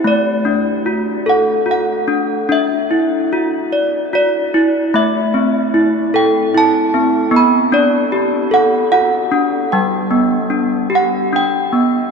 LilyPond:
\new Staff \with { instrumentName = "Handbells" } { \time 6/8 \key d \mixolydian \tempo 4. = 50 << { d''4. fis''8 fis''4 | e''4. r8 d''4 | e''4. g''8 a''4 | b''8 d''4 fis''8 fis''4 |
g''4. fis''8 g''4 | } \\ { a8 d'8 fis'8 a'8 fis'8 d'8 | d'8 e'8 fis'8 d''8 fis'8 e'8 | a8 c'8 e'8 a'8 e'8 c'8 | b8 d'8 g'8 a'8 fis'8 d'8 |
g8 b8 d'8 g'8 d'8 b8 | } >> }